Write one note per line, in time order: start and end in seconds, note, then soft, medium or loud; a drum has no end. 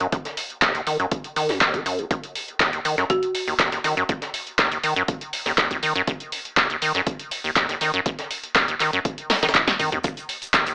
0.00 0.07 F#2 loud
0.00 closed hi-hat soft
0.12 0.17 D#2 loud
0.12 kick loud
0.12 closed hi-hat medium
0.25 snare soft
0.25 closed hi-hat soft
0.37 closed hi-hat medium
0.37 open hi-hat loud
0.50 closed hi-hat soft
0.62 0.73 D#2 loud
0.62 kick loud
0.62 snare loud
0.62 clap loud
0.62 closed hi-hat medium
0.75 0.81 D#2 medium
0.75 closed hi-hat soft
0.87 0.97 D#3 medium
0.87 closed hi-hat medium
0.87 open hi-hat loud
1.00 1.06 F#2 loud
1.00 closed hi-hat soft
1.11 kick loud
1.11 closed hi-hat medium
1.24 closed hi-hat soft
1.36 1.51 D#3 medium
1.36 closed hi-hat medium
1.36 open hi-hat loud
1.49 1.59 F#2 medium
1.49 snare soft
1.49 open hi-hat medium
1.61 1.76 D#2 loud
1.61 kick loud
1.61 snare loud
1.61 clap loud
1.61 closed hi-hat medium
1.74 1.81 D#3 medium
1.74 kick medium
1.74 closed hi-hat soft
1.86 2.00 F#2 medium
1.86 closed hi-hat medium
1.86 open hi-hat loud
1.99 2.05 D#1 medium
1.99 closed hi-hat soft
2.11 2.15 D#2 loud
2.11 kick loud
2.11 closed hi-hat medium
2.23 closed hi-hat soft
2.35 closed hi-hat medium
2.35 open hi-hat loud
2.48 closed hi-hat soft
2.60 2.71 D#2 loud
2.60 kick loud
2.60 snare loud
2.60 clap loud
2.60 closed hi-hat medium
2.73 2.80 D#2 medium
2.73 closed hi-hat medium
2.85 2.96 D#3 medium
2.85 closed hi-hat medium
2.85 open hi-hat loud
2.98 3.05 F#2 loud
2.98 snare soft
2.98 closed hi-hat soft
3.10 3.60 F#4 medium
3.10 kick loud
3.10 closed hi-hat medium
3.23 closed hi-hat medium
3.35 closed hi-hat medium
3.35 open hi-hat loud
3.48 3.54 D#2 medium
3.48 open hi-hat medium
3.59 3.70 D#2 loud
3.59 kick loud
3.59 snare loud
3.59 clap loud
3.59 closed hi-hat medium
3.72 3.79 D#2 medium
3.72 snare soft
3.72 closed hi-hat soft
3.84 3.95 D#3 medium
3.84 snare soft
3.84 closed hi-hat medium
3.84 open hi-hat loud
3.97 4.04 F#2 loud
3.97 closed hi-hat soft
4.09 4.13 D#2 loud
4.09 kick loud
4.09 closed hi-hat medium
4.22 snare soft
4.22 closed hi-hat soft
4.34 closed hi-hat medium
4.34 open hi-hat loud
4.47 closed hi-hat soft
4.59 4.69 D#2 loud
4.59 kick loud
4.59 snare loud
4.59 clap loud
4.59 closed hi-hat medium
4.71 4.78 D#2 medium
4.71 closed hi-hat medium
4.83 4.94 D#3 medium
4.83 closed hi-hat medium
4.83 open hi-hat loud
4.96 5.03 F#2 loud
4.96 closed hi-hat soft
5.08 kick loud
5.08 closed hi-hat medium
5.21 closed hi-hat medium
5.33 closed hi-hat medium
5.33 open hi-hat loud
5.46 5.53 D#2 medium
5.46 snare soft
5.46 open hi-hat medium
5.58 5.69 D#2 loud
5.58 kick loud
5.58 snare loud
5.58 clap loud
5.58 closed hi-hat medium
5.71 5.77 D#2 medium
5.71 kick medium
5.71 closed hi-hat medium
5.83 5.93 D#3 medium
5.83 closed hi-hat medium
5.83 open hi-hat loud
5.95 6.02 F#2 loud
5.95 closed hi-hat soft
6.07 6.12 D#2 loud
6.07 kick loud
6.07 closed hi-hat medium
6.20 closed hi-hat medium
6.32 closed hi-hat medium
6.32 open hi-hat loud
6.45 closed hi-hat soft
6.57 6.68 D#2 loud
6.57 kick loud
6.57 snare loud
6.57 clap loud
6.57 closed hi-hat medium
6.70 6.76 D#2 medium
6.70 closed hi-hat medium
6.82 6.93 D#3 medium
6.82 closed hi-hat medium
6.82 open hi-hat loud
6.95 7.01 F#2 loud
6.95 snare soft
6.95 closed hi-hat soft
7.07 kick loud
7.07 closed hi-hat medium
7.19 closed hi-hat medium
7.31 closed hi-hat medium
7.31 open hi-hat loud
7.44 7.51 D#2 medium
7.44 open hi-hat medium
7.56 7.67 D#2 loud
7.56 kick loud
7.56 snare loud
7.56 clap loud
7.56 closed hi-hat medium
7.69 7.76 D#2 medium
7.69 snare soft
7.69 closed hi-hat medium
7.81 7.92 D#3 medium
7.81 snare soft
7.81 closed hi-hat medium
7.81 open hi-hat loud
7.94 8.00 F#2 loud
7.94 closed hi-hat soft
8.06 8.10 D#2 loud
8.06 kick loud
8.06 closed hi-hat medium
8.19 snare soft
8.19 closed hi-hat medium
8.31 closed hi-hat medium
8.31 open hi-hat loud
8.43 closed hi-hat soft
8.55 8.66 D#2 loud
8.55 kick loud
8.55 snare loud
8.55 clap loud
8.55 closed hi-hat medium
8.68 8.75 D#2 medium
8.68 closed hi-hat medium
8.80 8.91 D#3 medium
8.80 clap soft
8.80 closed hi-hat medium
8.80 open hi-hat loud
8.93 9.00 F#2 loud
8.93 closed hi-hat soft
9.05 kick loud
9.05 closed hi-hat medium
9.18 closed hi-hat medium
9.30 snare medium
9.30 snare loud
9.30 closed hi-hat medium
9.30 open hi-hat loud
9.43 9.47 D#3 loud
9.43 snare medium
9.43 closed hi-hat medium
9.43 open hi-hat medium
9.43 high tom medium
9.49 snare medium
9.49 closed hi-hat medium
9.55 9.59 D#2 loud
9.55 kick loud
9.55 snare loud
9.55 clap loud
9.55 closed hi-hat medium
9.55 mid tom medium
9.67 9.74 D#2 medium
9.67 kick medium
9.67 snare medium
9.67 closed hi-hat medium
9.79 9.90 D#3 medium
9.79 closed hi-hat medium
9.79 mid tom medium
9.79 open hi-hat loud
9.92 9.99 D#2 medium
9.92 closed hi-hat soft
9.92 mid tom medium
10.04 10.08 D#2 loud
10.04 kick loud
10.04 closed hi-hat medium
10.04 shaker medium
10.17 closed hi-hat medium
10.17 shaker soft
10.29 closed hi-hat medium
10.29 open hi-hat loud
10.42 closed hi-hat soft
10.42 shaker medium
10.54 10.64 D#2 loud
10.54 kick loud
10.54 snare loud
10.54 clap loud
10.54 closed hi-hat medium
10.54 shaker medium
10.67 10.73 D#2 medium
10.67 closed hi-hat medium
10.67 shaker soft